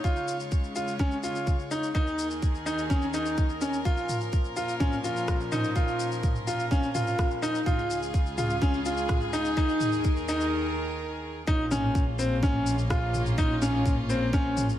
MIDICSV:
0, 0, Header, 1, 5, 480
1, 0, Start_track
1, 0, Key_signature, -5, "minor"
1, 0, Tempo, 476190
1, 44, Time_signature, 4, 2, 24, 8
1, 14906, End_track
2, 0, Start_track
2, 0, Title_t, "Upright piano"
2, 0, Program_c, 0, 0
2, 40, Note_on_c, 0, 65, 89
2, 351, Note_off_c, 0, 65, 0
2, 762, Note_on_c, 0, 65, 72
2, 917, Note_off_c, 0, 65, 0
2, 1004, Note_on_c, 0, 61, 87
2, 1159, Note_off_c, 0, 61, 0
2, 1243, Note_on_c, 0, 65, 75
2, 1553, Note_off_c, 0, 65, 0
2, 1724, Note_on_c, 0, 63, 74
2, 1879, Note_off_c, 0, 63, 0
2, 1962, Note_on_c, 0, 63, 86
2, 2272, Note_off_c, 0, 63, 0
2, 2682, Note_on_c, 0, 63, 74
2, 2837, Note_off_c, 0, 63, 0
2, 2921, Note_on_c, 0, 61, 81
2, 3077, Note_off_c, 0, 61, 0
2, 3164, Note_on_c, 0, 63, 74
2, 3474, Note_off_c, 0, 63, 0
2, 3642, Note_on_c, 0, 61, 70
2, 3797, Note_off_c, 0, 61, 0
2, 3883, Note_on_c, 0, 65, 87
2, 4193, Note_off_c, 0, 65, 0
2, 4600, Note_on_c, 0, 65, 82
2, 4756, Note_off_c, 0, 65, 0
2, 4839, Note_on_c, 0, 61, 91
2, 4995, Note_off_c, 0, 61, 0
2, 5081, Note_on_c, 0, 65, 75
2, 5392, Note_off_c, 0, 65, 0
2, 5564, Note_on_c, 0, 63, 76
2, 5719, Note_off_c, 0, 63, 0
2, 5802, Note_on_c, 0, 65, 86
2, 6112, Note_off_c, 0, 65, 0
2, 6524, Note_on_c, 0, 65, 79
2, 6679, Note_off_c, 0, 65, 0
2, 6765, Note_on_c, 0, 61, 86
2, 6919, Note_off_c, 0, 61, 0
2, 7002, Note_on_c, 0, 65, 81
2, 7312, Note_off_c, 0, 65, 0
2, 7483, Note_on_c, 0, 63, 79
2, 7638, Note_off_c, 0, 63, 0
2, 7723, Note_on_c, 0, 65, 90
2, 8033, Note_off_c, 0, 65, 0
2, 8444, Note_on_c, 0, 65, 84
2, 8599, Note_off_c, 0, 65, 0
2, 8687, Note_on_c, 0, 61, 89
2, 8841, Note_off_c, 0, 61, 0
2, 8929, Note_on_c, 0, 65, 80
2, 9237, Note_off_c, 0, 65, 0
2, 9406, Note_on_c, 0, 63, 80
2, 9560, Note_off_c, 0, 63, 0
2, 9648, Note_on_c, 0, 63, 92
2, 9956, Note_off_c, 0, 63, 0
2, 10368, Note_on_c, 0, 63, 77
2, 10522, Note_off_c, 0, 63, 0
2, 11566, Note_on_c, 0, 63, 91
2, 11720, Note_off_c, 0, 63, 0
2, 11806, Note_on_c, 0, 61, 83
2, 12115, Note_off_c, 0, 61, 0
2, 12284, Note_on_c, 0, 60, 78
2, 12439, Note_off_c, 0, 60, 0
2, 12529, Note_on_c, 0, 61, 93
2, 12837, Note_off_c, 0, 61, 0
2, 13007, Note_on_c, 0, 65, 82
2, 13315, Note_off_c, 0, 65, 0
2, 13489, Note_on_c, 0, 63, 95
2, 13642, Note_off_c, 0, 63, 0
2, 13728, Note_on_c, 0, 61, 78
2, 14036, Note_off_c, 0, 61, 0
2, 14206, Note_on_c, 0, 60, 83
2, 14360, Note_off_c, 0, 60, 0
2, 14448, Note_on_c, 0, 61, 96
2, 14756, Note_off_c, 0, 61, 0
2, 14906, End_track
3, 0, Start_track
3, 0, Title_t, "String section"
3, 0, Program_c, 1, 48
3, 0, Note_on_c, 1, 65, 69
3, 0, Note_on_c, 1, 73, 80
3, 42, Note_on_c, 1, 56, 71
3, 44, Note_on_c, 1, 49, 78
3, 1926, Note_off_c, 1, 65, 0
3, 1926, Note_off_c, 1, 73, 0
3, 1944, Note_off_c, 1, 56, 0
3, 1945, Note_off_c, 1, 49, 0
3, 1968, Note_on_c, 1, 39, 78
3, 1969, Note_on_c, 1, 51, 76
3, 1970, Note_on_c, 1, 70, 86
3, 1971, Note_on_c, 1, 68, 73
3, 3867, Note_off_c, 1, 39, 0
3, 3868, Note_off_c, 1, 51, 0
3, 3869, Note_off_c, 1, 68, 0
3, 3888, Note_on_c, 1, 46, 81
3, 3888, Note_on_c, 1, 53, 74
3, 3888, Note_on_c, 1, 61, 68
3, 7687, Note_off_c, 1, 70, 0
3, 7688, Note_off_c, 1, 46, 0
3, 7688, Note_off_c, 1, 53, 0
3, 7688, Note_off_c, 1, 61, 0
3, 7726, Note_on_c, 1, 49, 79
3, 7726, Note_on_c, 1, 68, 93
3, 7727, Note_on_c, 1, 37, 82
3, 7727, Note_on_c, 1, 65, 75
3, 9626, Note_off_c, 1, 49, 0
3, 9626, Note_off_c, 1, 65, 0
3, 9627, Note_off_c, 1, 37, 0
3, 9647, Note_on_c, 1, 39, 84
3, 9649, Note_on_c, 1, 70, 96
3, 9650, Note_on_c, 1, 51, 76
3, 11527, Note_off_c, 1, 68, 0
3, 11547, Note_off_c, 1, 39, 0
3, 11548, Note_off_c, 1, 51, 0
3, 11548, Note_off_c, 1, 70, 0
3, 11568, Note_on_c, 1, 61, 76
3, 11569, Note_on_c, 1, 58, 84
3, 11570, Note_on_c, 1, 65, 88
3, 14906, Note_off_c, 1, 58, 0
3, 14906, Note_off_c, 1, 61, 0
3, 14906, Note_off_c, 1, 65, 0
3, 14906, End_track
4, 0, Start_track
4, 0, Title_t, "Double bass section"
4, 0, Program_c, 2, 48
4, 11567, Note_on_c, 2, 34, 92
4, 14906, Note_off_c, 2, 34, 0
4, 14906, End_track
5, 0, Start_track
5, 0, Title_t, "Drums"
5, 41, Note_on_c, 9, 82, 39
5, 42, Note_on_c, 9, 36, 93
5, 142, Note_off_c, 9, 82, 0
5, 143, Note_off_c, 9, 36, 0
5, 163, Note_on_c, 9, 82, 20
5, 264, Note_off_c, 9, 82, 0
5, 283, Note_on_c, 9, 82, 70
5, 384, Note_off_c, 9, 82, 0
5, 402, Note_on_c, 9, 82, 29
5, 503, Note_off_c, 9, 82, 0
5, 522, Note_on_c, 9, 36, 100
5, 522, Note_on_c, 9, 82, 42
5, 623, Note_off_c, 9, 36, 0
5, 623, Note_off_c, 9, 82, 0
5, 642, Note_on_c, 9, 82, 21
5, 743, Note_off_c, 9, 82, 0
5, 762, Note_on_c, 9, 82, 76
5, 863, Note_off_c, 9, 82, 0
5, 883, Note_on_c, 9, 82, 29
5, 984, Note_off_c, 9, 82, 0
5, 1002, Note_on_c, 9, 36, 97
5, 1003, Note_on_c, 9, 82, 37
5, 1103, Note_off_c, 9, 36, 0
5, 1104, Note_off_c, 9, 82, 0
5, 1123, Note_on_c, 9, 82, 20
5, 1223, Note_off_c, 9, 82, 0
5, 1243, Note_on_c, 9, 82, 69
5, 1344, Note_off_c, 9, 82, 0
5, 1364, Note_on_c, 9, 82, 27
5, 1465, Note_off_c, 9, 82, 0
5, 1483, Note_on_c, 9, 36, 99
5, 1483, Note_on_c, 9, 82, 38
5, 1583, Note_off_c, 9, 36, 0
5, 1584, Note_off_c, 9, 82, 0
5, 1603, Note_on_c, 9, 82, 19
5, 1704, Note_off_c, 9, 82, 0
5, 1724, Note_on_c, 9, 82, 67
5, 1825, Note_off_c, 9, 82, 0
5, 1845, Note_on_c, 9, 82, 30
5, 1946, Note_off_c, 9, 82, 0
5, 1964, Note_on_c, 9, 36, 93
5, 1964, Note_on_c, 9, 82, 37
5, 2065, Note_off_c, 9, 36, 0
5, 2065, Note_off_c, 9, 82, 0
5, 2088, Note_on_c, 9, 82, 20
5, 2189, Note_off_c, 9, 82, 0
5, 2205, Note_on_c, 9, 82, 70
5, 2306, Note_off_c, 9, 82, 0
5, 2325, Note_on_c, 9, 82, 29
5, 2426, Note_off_c, 9, 82, 0
5, 2444, Note_on_c, 9, 36, 102
5, 2446, Note_on_c, 9, 82, 46
5, 2545, Note_off_c, 9, 36, 0
5, 2547, Note_off_c, 9, 82, 0
5, 2568, Note_on_c, 9, 82, 19
5, 2668, Note_off_c, 9, 82, 0
5, 2686, Note_on_c, 9, 82, 72
5, 2787, Note_off_c, 9, 82, 0
5, 2805, Note_on_c, 9, 82, 30
5, 2906, Note_off_c, 9, 82, 0
5, 2924, Note_on_c, 9, 36, 96
5, 2925, Note_on_c, 9, 82, 40
5, 3025, Note_off_c, 9, 36, 0
5, 3026, Note_off_c, 9, 82, 0
5, 3043, Note_on_c, 9, 82, 19
5, 3144, Note_off_c, 9, 82, 0
5, 3162, Note_on_c, 9, 82, 70
5, 3262, Note_off_c, 9, 82, 0
5, 3282, Note_on_c, 9, 82, 32
5, 3383, Note_off_c, 9, 82, 0
5, 3403, Note_on_c, 9, 82, 39
5, 3405, Note_on_c, 9, 36, 106
5, 3503, Note_off_c, 9, 82, 0
5, 3505, Note_off_c, 9, 36, 0
5, 3522, Note_on_c, 9, 82, 20
5, 3622, Note_off_c, 9, 82, 0
5, 3641, Note_on_c, 9, 82, 69
5, 3742, Note_off_c, 9, 82, 0
5, 3764, Note_on_c, 9, 82, 28
5, 3864, Note_off_c, 9, 82, 0
5, 3884, Note_on_c, 9, 36, 96
5, 3884, Note_on_c, 9, 82, 38
5, 3985, Note_off_c, 9, 36, 0
5, 3985, Note_off_c, 9, 82, 0
5, 4003, Note_on_c, 9, 82, 19
5, 4103, Note_off_c, 9, 82, 0
5, 4124, Note_on_c, 9, 45, 61
5, 4124, Note_on_c, 9, 82, 68
5, 4224, Note_off_c, 9, 45, 0
5, 4224, Note_off_c, 9, 82, 0
5, 4241, Note_on_c, 9, 82, 28
5, 4342, Note_off_c, 9, 82, 0
5, 4361, Note_on_c, 9, 82, 41
5, 4364, Note_on_c, 9, 36, 103
5, 4462, Note_off_c, 9, 82, 0
5, 4464, Note_off_c, 9, 36, 0
5, 4480, Note_on_c, 9, 82, 20
5, 4581, Note_off_c, 9, 82, 0
5, 4601, Note_on_c, 9, 82, 68
5, 4701, Note_off_c, 9, 82, 0
5, 4722, Note_on_c, 9, 82, 29
5, 4823, Note_off_c, 9, 82, 0
5, 4843, Note_on_c, 9, 36, 99
5, 4843, Note_on_c, 9, 45, 58
5, 4843, Note_on_c, 9, 82, 36
5, 4944, Note_off_c, 9, 36, 0
5, 4944, Note_off_c, 9, 45, 0
5, 4944, Note_off_c, 9, 82, 0
5, 4964, Note_on_c, 9, 82, 19
5, 5065, Note_off_c, 9, 82, 0
5, 5083, Note_on_c, 9, 82, 68
5, 5184, Note_off_c, 9, 82, 0
5, 5205, Note_on_c, 9, 82, 29
5, 5306, Note_off_c, 9, 82, 0
5, 5323, Note_on_c, 9, 36, 98
5, 5323, Note_on_c, 9, 37, 64
5, 5323, Note_on_c, 9, 82, 38
5, 5424, Note_off_c, 9, 36, 0
5, 5424, Note_off_c, 9, 37, 0
5, 5424, Note_off_c, 9, 82, 0
5, 5446, Note_on_c, 9, 82, 20
5, 5546, Note_off_c, 9, 82, 0
5, 5563, Note_on_c, 9, 45, 56
5, 5563, Note_on_c, 9, 82, 65
5, 5664, Note_off_c, 9, 45, 0
5, 5664, Note_off_c, 9, 82, 0
5, 5685, Note_on_c, 9, 82, 28
5, 5785, Note_off_c, 9, 82, 0
5, 5803, Note_on_c, 9, 82, 39
5, 5804, Note_on_c, 9, 36, 93
5, 5904, Note_off_c, 9, 36, 0
5, 5904, Note_off_c, 9, 82, 0
5, 5924, Note_on_c, 9, 82, 19
5, 6025, Note_off_c, 9, 82, 0
5, 6045, Note_on_c, 9, 82, 68
5, 6146, Note_off_c, 9, 82, 0
5, 6165, Note_on_c, 9, 82, 28
5, 6266, Note_off_c, 9, 82, 0
5, 6283, Note_on_c, 9, 36, 97
5, 6285, Note_on_c, 9, 45, 67
5, 6285, Note_on_c, 9, 82, 42
5, 6384, Note_off_c, 9, 36, 0
5, 6385, Note_off_c, 9, 45, 0
5, 6385, Note_off_c, 9, 82, 0
5, 6406, Note_on_c, 9, 82, 20
5, 6506, Note_off_c, 9, 82, 0
5, 6527, Note_on_c, 9, 82, 70
5, 6628, Note_off_c, 9, 82, 0
5, 6648, Note_on_c, 9, 82, 30
5, 6749, Note_off_c, 9, 82, 0
5, 6764, Note_on_c, 9, 36, 97
5, 6768, Note_on_c, 9, 82, 41
5, 6865, Note_off_c, 9, 36, 0
5, 6868, Note_off_c, 9, 82, 0
5, 6885, Note_on_c, 9, 82, 19
5, 6985, Note_off_c, 9, 82, 0
5, 7004, Note_on_c, 9, 45, 67
5, 7004, Note_on_c, 9, 82, 67
5, 7105, Note_off_c, 9, 45, 0
5, 7105, Note_off_c, 9, 82, 0
5, 7127, Note_on_c, 9, 82, 28
5, 7228, Note_off_c, 9, 82, 0
5, 7245, Note_on_c, 9, 36, 107
5, 7247, Note_on_c, 9, 37, 65
5, 7247, Note_on_c, 9, 82, 36
5, 7345, Note_off_c, 9, 36, 0
5, 7347, Note_off_c, 9, 37, 0
5, 7347, Note_off_c, 9, 82, 0
5, 7367, Note_on_c, 9, 82, 21
5, 7467, Note_off_c, 9, 82, 0
5, 7487, Note_on_c, 9, 82, 69
5, 7588, Note_off_c, 9, 82, 0
5, 7608, Note_on_c, 9, 82, 30
5, 7709, Note_off_c, 9, 82, 0
5, 7725, Note_on_c, 9, 36, 91
5, 7730, Note_on_c, 9, 45, 58
5, 7730, Note_on_c, 9, 82, 37
5, 7826, Note_off_c, 9, 36, 0
5, 7831, Note_off_c, 9, 45, 0
5, 7831, Note_off_c, 9, 82, 0
5, 7849, Note_on_c, 9, 82, 19
5, 7950, Note_off_c, 9, 82, 0
5, 7968, Note_on_c, 9, 82, 71
5, 8068, Note_off_c, 9, 82, 0
5, 8089, Note_on_c, 9, 82, 30
5, 8190, Note_off_c, 9, 82, 0
5, 8205, Note_on_c, 9, 36, 104
5, 8209, Note_on_c, 9, 82, 43
5, 8306, Note_off_c, 9, 36, 0
5, 8309, Note_off_c, 9, 82, 0
5, 8327, Note_on_c, 9, 82, 20
5, 8428, Note_off_c, 9, 82, 0
5, 8446, Note_on_c, 9, 45, 68
5, 8446, Note_on_c, 9, 82, 72
5, 8546, Note_off_c, 9, 45, 0
5, 8546, Note_off_c, 9, 82, 0
5, 8567, Note_on_c, 9, 82, 30
5, 8668, Note_off_c, 9, 82, 0
5, 8686, Note_on_c, 9, 36, 102
5, 8687, Note_on_c, 9, 82, 38
5, 8787, Note_off_c, 9, 36, 0
5, 8788, Note_off_c, 9, 82, 0
5, 8806, Note_on_c, 9, 82, 21
5, 8907, Note_off_c, 9, 82, 0
5, 8926, Note_on_c, 9, 82, 75
5, 9027, Note_off_c, 9, 82, 0
5, 9045, Note_on_c, 9, 82, 29
5, 9146, Note_off_c, 9, 82, 0
5, 9163, Note_on_c, 9, 37, 65
5, 9163, Note_on_c, 9, 45, 65
5, 9163, Note_on_c, 9, 82, 34
5, 9166, Note_on_c, 9, 36, 108
5, 9264, Note_off_c, 9, 37, 0
5, 9264, Note_off_c, 9, 45, 0
5, 9264, Note_off_c, 9, 82, 0
5, 9267, Note_off_c, 9, 36, 0
5, 9283, Note_on_c, 9, 82, 19
5, 9384, Note_off_c, 9, 82, 0
5, 9405, Note_on_c, 9, 82, 68
5, 9506, Note_off_c, 9, 82, 0
5, 9524, Note_on_c, 9, 82, 30
5, 9625, Note_off_c, 9, 82, 0
5, 9644, Note_on_c, 9, 82, 37
5, 9646, Note_on_c, 9, 36, 95
5, 9745, Note_off_c, 9, 82, 0
5, 9747, Note_off_c, 9, 36, 0
5, 9764, Note_on_c, 9, 82, 20
5, 9865, Note_off_c, 9, 82, 0
5, 9884, Note_on_c, 9, 45, 67
5, 9884, Note_on_c, 9, 82, 67
5, 9984, Note_off_c, 9, 45, 0
5, 9984, Note_off_c, 9, 82, 0
5, 10003, Note_on_c, 9, 82, 30
5, 10104, Note_off_c, 9, 82, 0
5, 10124, Note_on_c, 9, 82, 42
5, 10127, Note_on_c, 9, 36, 109
5, 10225, Note_off_c, 9, 82, 0
5, 10227, Note_off_c, 9, 36, 0
5, 10245, Note_on_c, 9, 82, 19
5, 10346, Note_off_c, 9, 82, 0
5, 10366, Note_on_c, 9, 82, 75
5, 10467, Note_off_c, 9, 82, 0
5, 10488, Note_on_c, 9, 82, 30
5, 10589, Note_off_c, 9, 82, 0
5, 11566, Note_on_c, 9, 82, 39
5, 11567, Note_on_c, 9, 36, 102
5, 11667, Note_off_c, 9, 82, 0
5, 11668, Note_off_c, 9, 36, 0
5, 11808, Note_on_c, 9, 45, 68
5, 11808, Note_on_c, 9, 82, 63
5, 11908, Note_off_c, 9, 45, 0
5, 11908, Note_off_c, 9, 82, 0
5, 12046, Note_on_c, 9, 36, 108
5, 12048, Note_on_c, 9, 82, 42
5, 12147, Note_off_c, 9, 36, 0
5, 12149, Note_off_c, 9, 82, 0
5, 12288, Note_on_c, 9, 82, 64
5, 12389, Note_off_c, 9, 82, 0
5, 12527, Note_on_c, 9, 36, 105
5, 12529, Note_on_c, 9, 45, 66
5, 12529, Note_on_c, 9, 82, 41
5, 12627, Note_off_c, 9, 36, 0
5, 12630, Note_off_c, 9, 45, 0
5, 12630, Note_off_c, 9, 82, 0
5, 12767, Note_on_c, 9, 82, 66
5, 12868, Note_off_c, 9, 82, 0
5, 12887, Note_on_c, 9, 82, 27
5, 12987, Note_off_c, 9, 82, 0
5, 13007, Note_on_c, 9, 36, 111
5, 13007, Note_on_c, 9, 37, 74
5, 13007, Note_on_c, 9, 82, 39
5, 13107, Note_off_c, 9, 36, 0
5, 13108, Note_off_c, 9, 37, 0
5, 13108, Note_off_c, 9, 82, 0
5, 13247, Note_on_c, 9, 45, 64
5, 13247, Note_on_c, 9, 82, 60
5, 13348, Note_off_c, 9, 45, 0
5, 13348, Note_off_c, 9, 82, 0
5, 13368, Note_on_c, 9, 82, 28
5, 13469, Note_off_c, 9, 82, 0
5, 13486, Note_on_c, 9, 36, 104
5, 13487, Note_on_c, 9, 82, 42
5, 13587, Note_off_c, 9, 36, 0
5, 13588, Note_off_c, 9, 82, 0
5, 13728, Note_on_c, 9, 82, 61
5, 13829, Note_off_c, 9, 82, 0
5, 13966, Note_on_c, 9, 36, 112
5, 13970, Note_on_c, 9, 45, 69
5, 13970, Note_on_c, 9, 82, 45
5, 14067, Note_off_c, 9, 36, 0
5, 14071, Note_off_c, 9, 45, 0
5, 14071, Note_off_c, 9, 82, 0
5, 14209, Note_on_c, 9, 82, 65
5, 14310, Note_off_c, 9, 82, 0
5, 14446, Note_on_c, 9, 36, 109
5, 14449, Note_on_c, 9, 82, 40
5, 14547, Note_off_c, 9, 36, 0
5, 14550, Note_off_c, 9, 82, 0
5, 14689, Note_on_c, 9, 45, 68
5, 14689, Note_on_c, 9, 82, 71
5, 14790, Note_off_c, 9, 45, 0
5, 14790, Note_off_c, 9, 82, 0
5, 14810, Note_on_c, 9, 82, 30
5, 14906, Note_off_c, 9, 82, 0
5, 14906, End_track
0, 0, End_of_file